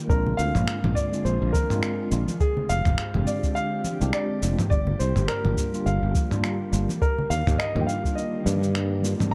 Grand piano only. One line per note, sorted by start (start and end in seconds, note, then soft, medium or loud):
0.09 0.39 A#4 loud
0.37 0.97 F5 loud
0.95 1.25 D5 loud
1.25 1.55 C5 medium
1.53 2.07 A#4 loud
2.40 2.70 G#4 loud
2.69 3.29 F5 loud
3.27 3.57 D5 medium
3.55 4.09 F5 loud
4.13 4.56 D5 loud
4.70 5.00 D5 loud
4.99 5.29 C5 medium
5.28 5.88 A#4 medium
5.86 6.40 F5 medium
7.02 7.32 A#4 loud
7.30 7.60 F5 loud
7.58 7.80 D#5 loud
7.81 7.88 G5 medium
7.87 8.17 F5 medium
8.15 8.99 D#5 medium